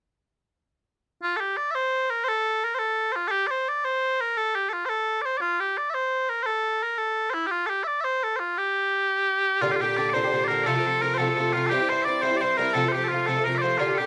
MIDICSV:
0, 0, Header, 1, 4, 480
1, 0, Start_track
1, 0, Tempo, 349447
1, 1677, Time_signature, 6, 3, 24, 8
1, 19318, End_track
2, 0, Start_track
2, 0, Title_t, "Bagpipes"
2, 0, Program_c, 0, 109
2, 1686, Note_on_c, 0, 65, 95
2, 1875, Note_off_c, 0, 65, 0
2, 1875, Note_on_c, 0, 69, 62
2, 1928, Note_off_c, 0, 69, 0
2, 1928, Note_on_c, 0, 67, 62
2, 2157, Note_off_c, 0, 67, 0
2, 2157, Note_on_c, 0, 74, 75
2, 2346, Note_off_c, 0, 74, 0
2, 2346, Note_on_c, 0, 76, 82
2, 2403, Note_off_c, 0, 76, 0
2, 2403, Note_on_c, 0, 72, 82
2, 2887, Note_off_c, 0, 72, 0
2, 2887, Note_on_c, 0, 70, 75
2, 3080, Note_off_c, 0, 70, 0
2, 3080, Note_on_c, 0, 72, 102
2, 3139, Note_off_c, 0, 72, 0
2, 3139, Note_on_c, 0, 69, 102
2, 3627, Note_off_c, 0, 69, 0
2, 3627, Note_on_c, 0, 70, 72
2, 3772, Note_off_c, 0, 70, 0
2, 3772, Note_on_c, 0, 72, 72
2, 3830, Note_off_c, 0, 72, 0
2, 3830, Note_on_c, 0, 69, 72
2, 4289, Note_off_c, 0, 69, 0
2, 4289, Note_on_c, 0, 72, 66
2, 4339, Note_off_c, 0, 72, 0
2, 4339, Note_on_c, 0, 65, 66
2, 4502, Note_off_c, 0, 65, 0
2, 4502, Note_on_c, 0, 69, 104
2, 4550, Note_off_c, 0, 69, 0
2, 4550, Note_on_c, 0, 67, 104
2, 4769, Note_off_c, 0, 67, 0
2, 4769, Note_on_c, 0, 74, 73
2, 4819, Note_off_c, 0, 74, 0
2, 4819, Note_on_c, 0, 72, 73
2, 5064, Note_off_c, 0, 72, 0
2, 5064, Note_on_c, 0, 74, 68
2, 5285, Note_off_c, 0, 74, 0
2, 5285, Note_on_c, 0, 72, 85
2, 5780, Note_off_c, 0, 72, 0
2, 5780, Note_on_c, 0, 70, 81
2, 6007, Note_off_c, 0, 70, 0
2, 6007, Note_on_c, 0, 69, 96
2, 6253, Note_off_c, 0, 69, 0
2, 6253, Note_on_c, 0, 67, 73
2, 6447, Note_off_c, 0, 67, 0
2, 6447, Note_on_c, 0, 69, 57
2, 6498, Note_off_c, 0, 69, 0
2, 6498, Note_on_c, 0, 65, 57
2, 6669, Note_off_c, 0, 65, 0
2, 6669, Note_on_c, 0, 72, 78
2, 6721, Note_off_c, 0, 72, 0
2, 6721, Note_on_c, 0, 69, 78
2, 7167, Note_off_c, 0, 69, 0
2, 7167, Note_on_c, 0, 74, 68
2, 7218, Note_on_c, 0, 72, 68
2, 7219, Note_off_c, 0, 74, 0
2, 7382, Note_off_c, 0, 72, 0
2, 7382, Note_on_c, 0, 74, 89
2, 7432, Note_off_c, 0, 74, 0
2, 7432, Note_on_c, 0, 65, 89
2, 7693, Note_off_c, 0, 65, 0
2, 7693, Note_on_c, 0, 67, 67
2, 7934, Note_off_c, 0, 67, 0
2, 7934, Note_on_c, 0, 74, 70
2, 8103, Note_off_c, 0, 74, 0
2, 8103, Note_on_c, 0, 76, 73
2, 8163, Note_off_c, 0, 76, 0
2, 8163, Note_on_c, 0, 72, 73
2, 8646, Note_off_c, 0, 72, 0
2, 8646, Note_on_c, 0, 70, 69
2, 8831, Note_off_c, 0, 70, 0
2, 8831, Note_on_c, 0, 72, 88
2, 8875, Note_off_c, 0, 72, 0
2, 8875, Note_on_c, 0, 69, 88
2, 9377, Note_off_c, 0, 69, 0
2, 9377, Note_on_c, 0, 70, 68
2, 9589, Note_off_c, 0, 70, 0
2, 9589, Note_on_c, 0, 69, 72
2, 10029, Note_off_c, 0, 69, 0
2, 10029, Note_on_c, 0, 72, 71
2, 10080, Note_off_c, 0, 72, 0
2, 10080, Note_on_c, 0, 64, 71
2, 10255, Note_off_c, 0, 64, 0
2, 10255, Note_on_c, 0, 67, 92
2, 10314, Note_off_c, 0, 67, 0
2, 10314, Note_on_c, 0, 65, 92
2, 10527, Note_off_c, 0, 65, 0
2, 10527, Note_on_c, 0, 69, 71
2, 10572, Note_off_c, 0, 69, 0
2, 10572, Note_on_c, 0, 67, 71
2, 10766, Note_off_c, 0, 67, 0
2, 10766, Note_on_c, 0, 76, 75
2, 10813, Note_off_c, 0, 76, 0
2, 10813, Note_on_c, 0, 74, 75
2, 10996, Note_off_c, 0, 74, 0
2, 10996, Note_on_c, 0, 76, 78
2, 11047, Note_off_c, 0, 76, 0
2, 11047, Note_on_c, 0, 72, 78
2, 11312, Note_off_c, 0, 72, 0
2, 11312, Note_on_c, 0, 69, 63
2, 11485, Note_off_c, 0, 69, 0
2, 11485, Note_on_c, 0, 72, 67
2, 11532, Note_off_c, 0, 72, 0
2, 11532, Note_on_c, 0, 65, 67
2, 11783, Note_off_c, 0, 65, 0
2, 11783, Note_on_c, 0, 67, 93
2, 13202, Note_off_c, 0, 67, 0
2, 13202, Note_on_c, 0, 65, 107
2, 13341, Note_off_c, 0, 65, 0
2, 13342, Note_on_c, 0, 67, 60
2, 13399, Note_off_c, 0, 67, 0
2, 13399, Note_on_c, 0, 65, 60
2, 13473, Note_off_c, 0, 65, 0
2, 13473, Note_on_c, 0, 67, 71
2, 13696, Note_off_c, 0, 67, 0
2, 13696, Note_on_c, 0, 74, 81
2, 13921, Note_off_c, 0, 74, 0
2, 13921, Note_on_c, 0, 72, 81
2, 14346, Note_off_c, 0, 72, 0
2, 14346, Note_on_c, 0, 74, 85
2, 14392, Note_off_c, 0, 74, 0
2, 14392, Note_on_c, 0, 70, 85
2, 14645, Note_off_c, 0, 70, 0
2, 14645, Note_on_c, 0, 69, 107
2, 15130, Note_off_c, 0, 69, 0
2, 15130, Note_on_c, 0, 70, 79
2, 15307, Note_off_c, 0, 70, 0
2, 15307, Note_on_c, 0, 72, 78
2, 15354, Note_off_c, 0, 72, 0
2, 15354, Note_on_c, 0, 69, 78
2, 15835, Note_off_c, 0, 69, 0
2, 15835, Note_on_c, 0, 65, 79
2, 16023, Note_off_c, 0, 65, 0
2, 16023, Note_on_c, 0, 69, 98
2, 16067, Note_off_c, 0, 69, 0
2, 16067, Note_on_c, 0, 67, 98
2, 16337, Note_off_c, 0, 67, 0
2, 16337, Note_on_c, 0, 72, 81
2, 16547, Note_off_c, 0, 72, 0
2, 16547, Note_on_c, 0, 74, 75
2, 16780, Note_off_c, 0, 74, 0
2, 16780, Note_on_c, 0, 72, 75
2, 16989, Note_off_c, 0, 72, 0
2, 16989, Note_on_c, 0, 74, 75
2, 17045, Note_off_c, 0, 74, 0
2, 17045, Note_on_c, 0, 72, 75
2, 17269, Note_off_c, 0, 72, 0
2, 17269, Note_on_c, 0, 70, 89
2, 17494, Note_off_c, 0, 70, 0
2, 17494, Note_on_c, 0, 69, 118
2, 17699, Note_off_c, 0, 69, 0
2, 17699, Note_on_c, 0, 72, 63
2, 17750, Note_off_c, 0, 72, 0
2, 17750, Note_on_c, 0, 67, 63
2, 17916, Note_off_c, 0, 67, 0
2, 17916, Note_on_c, 0, 69, 70
2, 17969, Note_off_c, 0, 69, 0
2, 17969, Note_on_c, 0, 65, 70
2, 18217, Note_off_c, 0, 65, 0
2, 18217, Note_on_c, 0, 69, 82
2, 18466, Note_off_c, 0, 69, 0
2, 18466, Note_on_c, 0, 70, 80
2, 18653, Note_off_c, 0, 70, 0
2, 18653, Note_on_c, 0, 74, 70
2, 18704, Note_off_c, 0, 74, 0
2, 18704, Note_on_c, 0, 72, 70
2, 18931, Note_off_c, 0, 72, 0
2, 18931, Note_on_c, 0, 65, 84
2, 19199, Note_off_c, 0, 65, 0
2, 19199, Note_on_c, 0, 67, 65
2, 19318, Note_off_c, 0, 67, 0
2, 19318, End_track
3, 0, Start_track
3, 0, Title_t, "Bagpipes"
3, 0, Program_c, 1, 109
3, 13207, Note_on_c, 1, 65, 64
3, 13471, Note_off_c, 1, 65, 0
3, 13471, Note_on_c, 1, 67, 74
3, 13873, Note_off_c, 1, 67, 0
3, 13873, Note_on_c, 1, 74, 64
3, 13932, Note_off_c, 1, 74, 0
3, 13932, Note_on_c, 1, 72, 64
3, 14608, Note_off_c, 1, 72, 0
3, 14608, Note_on_c, 1, 74, 75
3, 14658, Note_off_c, 1, 74, 0
3, 14658, Note_on_c, 1, 69, 75
3, 14812, Note_off_c, 1, 69, 0
3, 14812, Note_on_c, 1, 70, 61
3, 14922, Note_off_c, 1, 70, 0
3, 14922, Note_on_c, 1, 72, 78
3, 14970, Note_off_c, 1, 72, 0
3, 14970, Note_on_c, 1, 69, 78
3, 15136, Note_off_c, 1, 69, 0
3, 15136, Note_on_c, 1, 70, 67
3, 15359, Note_off_c, 1, 70, 0
3, 15359, Note_on_c, 1, 69, 76
3, 15850, Note_off_c, 1, 69, 0
3, 15850, Note_on_c, 1, 65, 71
3, 16086, Note_off_c, 1, 65, 0
3, 16086, Note_on_c, 1, 67, 67
3, 16349, Note_off_c, 1, 67, 0
3, 16349, Note_on_c, 1, 72, 74
3, 16512, Note_off_c, 1, 72, 0
3, 16512, Note_on_c, 1, 76, 73
3, 16558, Note_off_c, 1, 76, 0
3, 16558, Note_on_c, 1, 74, 73
3, 16797, Note_off_c, 1, 74, 0
3, 16797, Note_on_c, 1, 72, 77
3, 17006, Note_off_c, 1, 72, 0
3, 17006, Note_on_c, 1, 74, 79
3, 17064, Note_off_c, 1, 74, 0
3, 17064, Note_on_c, 1, 72, 79
3, 17280, Note_off_c, 1, 72, 0
3, 17280, Note_on_c, 1, 70, 79
3, 17517, Note_off_c, 1, 70, 0
3, 17517, Note_on_c, 1, 69, 77
3, 17784, Note_off_c, 1, 69, 0
3, 17784, Note_on_c, 1, 67, 68
3, 18010, Note_off_c, 1, 67, 0
3, 18010, Note_on_c, 1, 65, 71
3, 18243, Note_off_c, 1, 65, 0
3, 18243, Note_on_c, 1, 69, 67
3, 18487, Note_off_c, 1, 69, 0
3, 18487, Note_on_c, 1, 70, 78
3, 18612, Note_off_c, 1, 70, 0
3, 18612, Note_on_c, 1, 76, 46
3, 18670, Note_off_c, 1, 76, 0
3, 18670, Note_on_c, 1, 74, 46
3, 18719, Note_off_c, 1, 74, 0
3, 18719, Note_on_c, 1, 72, 75
3, 18950, Note_off_c, 1, 72, 0
3, 18950, Note_on_c, 1, 65, 68
3, 19145, Note_off_c, 1, 65, 0
3, 19145, Note_on_c, 1, 69, 77
3, 19203, Note_off_c, 1, 69, 0
3, 19203, Note_on_c, 1, 67, 77
3, 19318, Note_off_c, 1, 67, 0
3, 19318, End_track
4, 0, Start_track
4, 0, Title_t, "Bouzouki"
4, 0, Program_c, 2, 25
4, 13208, Note_on_c, 2, 46, 71
4, 13219, Note_on_c, 2, 50, 61
4, 13229, Note_on_c, 2, 62, 68
4, 13233, Note_on_c, 2, 67, 72
4, 13312, Note_off_c, 2, 67, 0
4, 13328, Note_on_c, 2, 67, 45
4, 13335, Note_off_c, 2, 46, 0
4, 13341, Note_off_c, 2, 50, 0
4, 13341, Note_off_c, 2, 62, 0
4, 13357, Note_on_c, 2, 62, 43
4, 13375, Note_on_c, 2, 50, 38
4, 13459, Note_off_c, 2, 67, 0
4, 13461, Note_off_c, 2, 50, 0
4, 13462, Note_on_c, 2, 46, 48
4, 13474, Note_off_c, 2, 62, 0
4, 13478, Note_on_c, 2, 50, 41
4, 13495, Note_on_c, 2, 62, 48
4, 13506, Note_on_c, 2, 67, 49
4, 13669, Note_off_c, 2, 46, 0
4, 13685, Note_on_c, 2, 46, 48
4, 13686, Note_off_c, 2, 50, 0
4, 13702, Note_off_c, 2, 62, 0
4, 13702, Note_on_c, 2, 50, 54
4, 13716, Note_off_c, 2, 67, 0
4, 13718, Note_on_c, 2, 62, 53
4, 13734, Note_on_c, 2, 67, 55
4, 13921, Note_off_c, 2, 46, 0
4, 13930, Note_off_c, 2, 50, 0
4, 13935, Note_on_c, 2, 46, 58
4, 13937, Note_off_c, 2, 62, 0
4, 13943, Note_on_c, 2, 50, 59
4, 13945, Note_off_c, 2, 67, 0
4, 13953, Note_on_c, 2, 62, 62
4, 13963, Note_on_c, 2, 67, 72
4, 14050, Note_off_c, 2, 67, 0
4, 14058, Note_off_c, 2, 46, 0
4, 14062, Note_off_c, 2, 50, 0
4, 14067, Note_off_c, 2, 62, 0
4, 14067, Note_on_c, 2, 67, 50
4, 14095, Note_on_c, 2, 62, 45
4, 14114, Note_on_c, 2, 50, 42
4, 14175, Note_on_c, 2, 46, 54
4, 14185, Note_off_c, 2, 50, 0
4, 14188, Note_off_c, 2, 67, 0
4, 14194, Note_off_c, 2, 62, 0
4, 14201, Note_on_c, 2, 50, 55
4, 14210, Note_on_c, 2, 62, 59
4, 14222, Note_on_c, 2, 67, 61
4, 14385, Note_off_c, 2, 46, 0
4, 14401, Note_on_c, 2, 46, 50
4, 14407, Note_off_c, 2, 50, 0
4, 14420, Note_off_c, 2, 62, 0
4, 14424, Note_on_c, 2, 50, 55
4, 14433, Note_off_c, 2, 67, 0
4, 14437, Note_on_c, 2, 62, 62
4, 14449, Note_on_c, 2, 67, 62
4, 14639, Note_off_c, 2, 46, 0
4, 14647, Note_on_c, 2, 48, 76
4, 14650, Note_off_c, 2, 50, 0
4, 14656, Note_off_c, 2, 62, 0
4, 14659, Note_on_c, 2, 53, 72
4, 14662, Note_off_c, 2, 67, 0
4, 14672, Note_on_c, 2, 57, 76
4, 14676, Note_on_c, 2, 65, 75
4, 14756, Note_off_c, 2, 65, 0
4, 14773, Note_on_c, 2, 65, 50
4, 14774, Note_off_c, 2, 48, 0
4, 14777, Note_off_c, 2, 57, 0
4, 14780, Note_off_c, 2, 53, 0
4, 14794, Note_on_c, 2, 57, 40
4, 14823, Note_on_c, 2, 53, 34
4, 14900, Note_off_c, 2, 65, 0
4, 14908, Note_on_c, 2, 48, 40
4, 14909, Note_off_c, 2, 53, 0
4, 14911, Note_off_c, 2, 57, 0
4, 14925, Note_on_c, 2, 53, 47
4, 14936, Note_on_c, 2, 57, 49
4, 14947, Note_on_c, 2, 65, 48
4, 15101, Note_off_c, 2, 48, 0
4, 15117, Note_on_c, 2, 48, 51
4, 15121, Note_off_c, 2, 53, 0
4, 15129, Note_off_c, 2, 57, 0
4, 15138, Note_on_c, 2, 53, 57
4, 15146, Note_off_c, 2, 65, 0
4, 15146, Note_on_c, 2, 57, 54
4, 15163, Note_on_c, 2, 65, 59
4, 15346, Note_off_c, 2, 48, 0
4, 15360, Note_off_c, 2, 53, 0
4, 15362, Note_on_c, 2, 48, 65
4, 15370, Note_off_c, 2, 57, 0
4, 15377, Note_on_c, 2, 53, 63
4, 15378, Note_off_c, 2, 65, 0
4, 15385, Note_on_c, 2, 57, 70
4, 15400, Note_on_c, 2, 65, 64
4, 15458, Note_off_c, 2, 65, 0
4, 15475, Note_on_c, 2, 65, 55
4, 15488, Note_off_c, 2, 57, 0
4, 15490, Note_off_c, 2, 48, 0
4, 15498, Note_off_c, 2, 53, 0
4, 15504, Note_on_c, 2, 57, 50
4, 15532, Note_on_c, 2, 53, 39
4, 15611, Note_off_c, 2, 65, 0
4, 15614, Note_on_c, 2, 48, 54
4, 15615, Note_off_c, 2, 53, 0
4, 15626, Note_off_c, 2, 57, 0
4, 15632, Note_on_c, 2, 53, 49
4, 15649, Note_on_c, 2, 57, 54
4, 15659, Note_on_c, 2, 65, 56
4, 15820, Note_off_c, 2, 48, 0
4, 15837, Note_on_c, 2, 48, 54
4, 15845, Note_off_c, 2, 53, 0
4, 15858, Note_off_c, 2, 57, 0
4, 15862, Note_on_c, 2, 53, 52
4, 15870, Note_off_c, 2, 65, 0
4, 15874, Note_on_c, 2, 57, 60
4, 15891, Note_on_c, 2, 65, 60
4, 16075, Note_off_c, 2, 48, 0
4, 16086, Note_on_c, 2, 43, 81
4, 16087, Note_off_c, 2, 53, 0
4, 16093, Note_off_c, 2, 57, 0
4, 16096, Note_on_c, 2, 55, 73
4, 16102, Note_off_c, 2, 65, 0
4, 16102, Note_on_c, 2, 60, 72
4, 16114, Note_on_c, 2, 64, 72
4, 16187, Note_off_c, 2, 64, 0
4, 16204, Note_on_c, 2, 64, 41
4, 16210, Note_off_c, 2, 60, 0
4, 16212, Note_off_c, 2, 43, 0
4, 16216, Note_off_c, 2, 55, 0
4, 16226, Note_on_c, 2, 60, 36
4, 16246, Note_on_c, 2, 55, 35
4, 16326, Note_off_c, 2, 55, 0
4, 16328, Note_on_c, 2, 43, 46
4, 16334, Note_off_c, 2, 64, 0
4, 16337, Note_off_c, 2, 60, 0
4, 16343, Note_on_c, 2, 55, 49
4, 16354, Note_on_c, 2, 60, 57
4, 16375, Note_on_c, 2, 64, 47
4, 16539, Note_off_c, 2, 43, 0
4, 16551, Note_off_c, 2, 55, 0
4, 16556, Note_on_c, 2, 43, 44
4, 16567, Note_on_c, 2, 55, 51
4, 16568, Note_off_c, 2, 60, 0
4, 16585, Note_on_c, 2, 60, 54
4, 16587, Note_off_c, 2, 64, 0
4, 16602, Note_on_c, 2, 64, 57
4, 16774, Note_off_c, 2, 43, 0
4, 16784, Note_off_c, 2, 55, 0
4, 16791, Note_on_c, 2, 43, 61
4, 16799, Note_off_c, 2, 60, 0
4, 16800, Note_on_c, 2, 55, 54
4, 16811, Note_off_c, 2, 64, 0
4, 16815, Note_on_c, 2, 60, 54
4, 16827, Note_on_c, 2, 64, 65
4, 16891, Note_off_c, 2, 64, 0
4, 16907, Note_on_c, 2, 64, 49
4, 16919, Note_off_c, 2, 60, 0
4, 16923, Note_off_c, 2, 43, 0
4, 16928, Note_off_c, 2, 55, 0
4, 16936, Note_on_c, 2, 60, 48
4, 16962, Note_on_c, 2, 55, 43
4, 17043, Note_on_c, 2, 43, 58
4, 17046, Note_off_c, 2, 64, 0
4, 17052, Note_off_c, 2, 55, 0
4, 17060, Note_off_c, 2, 60, 0
4, 17068, Note_on_c, 2, 55, 54
4, 17080, Note_on_c, 2, 60, 54
4, 17093, Note_on_c, 2, 64, 60
4, 17257, Note_off_c, 2, 43, 0
4, 17274, Note_on_c, 2, 43, 54
4, 17277, Note_off_c, 2, 55, 0
4, 17293, Note_off_c, 2, 60, 0
4, 17293, Note_on_c, 2, 55, 63
4, 17306, Note_off_c, 2, 64, 0
4, 17309, Note_on_c, 2, 60, 51
4, 17323, Note_on_c, 2, 64, 64
4, 17507, Note_off_c, 2, 43, 0
4, 17512, Note_on_c, 2, 48, 72
4, 17521, Note_off_c, 2, 55, 0
4, 17528, Note_on_c, 2, 53, 73
4, 17530, Note_off_c, 2, 60, 0
4, 17537, Note_off_c, 2, 64, 0
4, 17538, Note_on_c, 2, 57, 72
4, 17548, Note_on_c, 2, 65, 72
4, 17625, Note_off_c, 2, 65, 0
4, 17642, Note_on_c, 2, 65, 45
4, 17644, Note_off_c, 2, 48, 0
4, 17650, Note_off_c, 2, 57, 0
4, 17651, Note_off_c, 2, 53, 0
4, 17667, Note_on_c, 2, 57, 41
4, 17687, Note_on_c, 2, 53, 35
4, 17772, Note_off_c, 2, 65, 0
4, 17779, Note_on_c, 2, 48, 43
4, 17781, Note_off_c, 2, 53, 0
4, 17785, Note_off_c, 2, 57, 0
4, 17798, Note_on_c, 2, 53, 54
4, 17813, Note_on_c, 2, 57, 42
4, 17830, Note_on_c, 2, 65, 47
4, 17989, Note_off_c, 2, 48, 0
4, 18005, Note_off_c, 2, 53, 0
4, 18006, Note_on_c, 2, 48, 48
4, 18021, Note_on_c, 2, 53, 53
4, 18025, Note_off_c, 2, 57, 0
4, 18034, Note_off_c, 2, 65, 0
4, 18040, Note_on_c, 2, 57, 51
4, 18052, Note_on_c, 2, 65, 53
4, 18222, Note_off_c, 2, 48, 0
4, 18235, Note_off_c, 2, 53, 0
4, 18238, Note_on_c, 2, 48, 58
4, 18245, Note_off_c, 2, 57, 0
4, 18251, Note_on_c, 2, 53, 58
4, 18253, Note_off_c, 2, 65, 0
4, 18262, Note_on_c, 2, 57, 52
4, 18270, Note_on_c, 2, 65, 60
4, 18343, Note_off_c, 2, 65, 0
4, 18359, Note_on_c, 2, 65, 52
4, 18366, Note_off_c, 2, 48, 0
4, 18368, Note_off_c, 2, 57, 0
4, 18372, Note_off_c, 2, 53, 0
4, 18385, Note_on_c, 2, 57, 45
4, 18405, Note_on_c, 2, 53, 39
4, 18480, Note_off_c, 2, 53, 0
4, 18482, Note_on_c, 2, 48, 53
4, 18491, Note_off_c, 2, 65, 0
4, 18493, Note_off_c, 2, 57, 0
4, 18496, Note_on_c, 2, 53, 54
4, 18510, Note_on_c, 2, 57, 51
4, 18531, Note_on_c, 2, 65, 53
4, 18698, Note_off_c, 2, 48, 0
4, 18715, Note_on_c, 2, 48, 50
4, 18717, Note_off_c, 2, 53, 0
4, 18733, Note_off_c, 2, 57, 0
4, 18734, Note_on_c, 2, 53, 58
4, 18744, Note_off_c, 2, 65, 0
4, 18753, Note_on_c, 2, 57, 57
4, 18759, Note_on_c, 2, 65, 63
4, 18939, Note_off_c, 2, 48, 0
4, 18944, Note_on_c, 2, 46, 66
4, 18948, Note_off_c, 2, 53, 0
4, 18953, Note_on_c, 2, 50, 76
4, 18960, Note_off_c, 2, 57, 0
4, 18966, Note_on_c, 2, 62, 72
4, 18969, Note_off_c, 2, 65, 0
4, 18975, Note_on_c, 2, 67, 70
4, 19053, Note_off_c, 2, 67, 0
4, 19069, Note_on_c, 2, 67, 46
4, 19079, Note_off_c, 2, 46, 0
4, 19083, Note_off_c, 2, 50, 0
4, 19083, Note_off_c, 2, 62, 0
4, 19099, Note_on_c, 2, 62, 44
4, 19124, Note_on_c, 2, 50, 33
4, 19196, Note_off_c, 2, 50, 0
4, 19196, Note_on_c, 2, 46, 45
4, 19205, Note_off_c, 2, 67, 0
4, 19212, Note_on_c, 2, 50, 44
4, 19217, Note_off_c, 2, 62, 0
4, 19234, Note_on_c, 2, 62, 47
4, 19242, Note_on_c, 2, 67, 47
4, 19318, Note_off_c, 2, 46, 0
4, 19318, Note_off_c, 2, 50, 0
4, 19318, Note_off_c, 2, 62, 0
4, 19318, Note_off_c, 2, 67, 0
4, 19318, End_track
0, 0, End_of_file